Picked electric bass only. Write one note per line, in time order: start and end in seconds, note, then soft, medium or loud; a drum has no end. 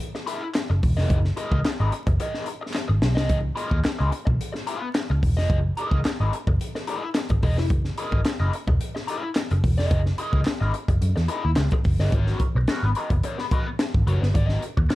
0.70 0.79 F#1 medium
0.83 0.94 E1 loud
0.97 1.06 F1 medium
1.10 1.30 F#1 loud
1.51 1.61 C#2 medium
1.65 muted picked electric bass stroke soft
1.80 1.89 G#1 medium
2.07 2.16 F#1 medium
2.89 2.99 G#1 medium
3.03 3.17 B1 loud
3.17 3.30 C2 medium
3.29 3.50 C#2 loud
3.71 3.81 D#2 medium
3.86 muted picked electric bass stroke medium
4.00 4.09 C#2 medium
4.27 4.37 B1 medium
5.10 5.19 C#2 medium
5.23 5.37 E1 medium
5.37 5.47 F1 medium
5.50 5.70 F#1 medium
5.91 6.01 C#2 medium
6.06 muted picked electric bass stroke soft
6.20 6.29 G#1 medium
6.47 6.56 F#1 medium
7.30 7.39 G#1 medium
7.43 7.58 E1 medium
7.58 7.70 F1 medium
7.70 7.91 F#1 loud
8.12 8.22 G#1 medium
8.25 muted picked electric bass stroke medium
8.40 8.49 F#1 medium
8.67 8.77 E1 loud
9.51 9.60 F#1 medium
9.64 9.78 E1 medium
9.78 9.88 F1 medium
9.91 10.11 F#1 loud
10.33 10.43 C#2 medium
10.61 10.71 G#1 loud
10.89 10.98 F#1 medium
11.01 11.12 F#2 medium
11.17 11.26 E2 medium
11.45 11.54 D#2 medium
11.57 11.68 C#2 medium
11.85 11.96 F#1 medium
11.99 12.09 G1 medium
12.12 12.33 G#1 medium
12.55 12.65 B1 medium
12.83 12.92 G#1 loud
13.10 13.20 F#1 medium
13.95 14.04 G#1 medium
14.07 14.18 F#1 medium
14.22 14.31 G1 medium
14.35 14.56 G#1 loud
14.78 14.87 D#2 medium
14.91 muted picked electric bass stroke soft